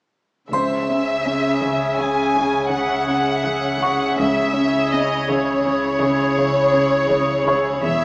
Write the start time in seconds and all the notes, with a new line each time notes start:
0.52 C#2 C#3 C#4 G#4 C5 E5 C6, triangle
0.89 C#4
1.26 C#4
1.62 C#3
1.97 C#3 G#5
2.35 C#3
2.71 C#3 F#5
3.07 C#3
3.44 C#3
3.81 C#3 C#6
4.18 C#2 C#3 E4 G#4 C#5 E5
4.55 C#4
4.91 C#4 D#5
5.28 C#3 C#5
5.65 C#3
6.02 C#3
6.39 C#3
6.75 C#3
7.11 C#3
7.46 C#3 C#5 C#6
7.83 E1 E2 G4 B4 E5